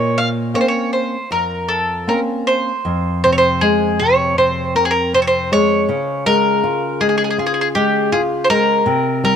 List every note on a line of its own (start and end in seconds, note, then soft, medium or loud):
0.00 0.53 A#2 medium
0.00 0.18 C#5 medium
0.18 0.28 F5 medium
0.54 1.15 A#3 soft
0.54 1.15 C4 soft
0.54 1.15 C#4 medium
0.54 0.60 C#5 medium
0.61 0.68 C5 medium
0.68 0.90 C#5 medium
0.93 1.31 C5 medium
1.31 2.06 F2 medium
1.31 2.05 A#4 medium
1.69 2.09 A4 medium
2.07 2.70 A#3 soft
2.07 2.71 C4 soft
2.07 2.71 C#4 soft
2.07 2.19 A#4 medium
2.47 3.23 C5 medium
2.85 5.85 F2 medium
3.24 3.62 C3 soft
3.24 3.32 C5 medium
3.32 3.38 C#5 medium
3.38 3.63 C5 medium
3.61 3.99 G#3 medium
3.61 4.01 G#4 medium
4.00 4.37 C3 soft
4.00 4.38 C#5 medium
4.38 4.75 C3 soft
4.38 4.75 C5 medium
4.75 5.12 C4 soft
4.75 4.83 A#4 medium
4.85 4.91 G#4 medium
4.91 5.14 A#4 medium
5.14 5.51 C3 soft
5.14 5.22 C5 medium
5.22 5.27 C#5 medium
5.27 5.52 C5 medium
5.52 5.88 G#3 soft
5.52 6.26 C#5 loud
5.89 8.82 C#3 medium
6.26 6.62 G#3 soft
6.26 7.03 A#4 loud
6.64 7.00 F4 medium
7.01 7.37 G#3 medium
7.01 7.08 G#4 medium
7.09 7.16 G#4 medium
7.18 7.23 G#4 medium
7.24 7.29 G#4 soft
7.31 7.37 G#4 medium
7.38 7.74 F4 soft
7.38 7.45 G#4 soft
7.46 7.53 G#4 medium
7.54 7.60 G#4 soft
7.61 7.67 G#4 medium
7.75 8.11 G#3 medium
7.75 8.12 G4 medium
8.12 8.48 F4 soft
8.12 8.20 G#4 medium
8.44 8.49 C5 medium
8.50 8.85 G#3 medium
8.50 9.23 A#4 medium
8.86 9.36 C3 medium
9.24 9.36 G3 medium
9.24 9.35 A#4 medium